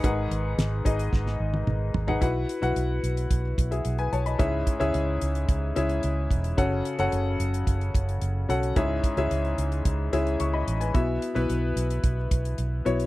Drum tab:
HH |x-x-x-xx--------|x-xxx-xxx-xxxxxx|x-xxx-xxx-xxx-xx|x-xxx-xxxxxxx-xx|
SD |----o---oo------|----------------|----------------|----------------|
T1 |-----------o----|----------------|----------------|----------------|
T2 |------------o---|----------------|----------------|----------------|
FT |--------------oo|----------------|----------------|----------------|
BD |o-----o-o-------|o-------o-o-----|o-o-----o-----o-|o-------o-o-----|

HH |x-xxxxxxx-xxx-xx|x-xxx-xxx-xxx-xx|
SD |----------------|----------------|
T1 |----------------|----------------|
T2 |----------------|----------------|
FT |----------------|----------------|
BD |o-o-----o-------|o-------o-o-----|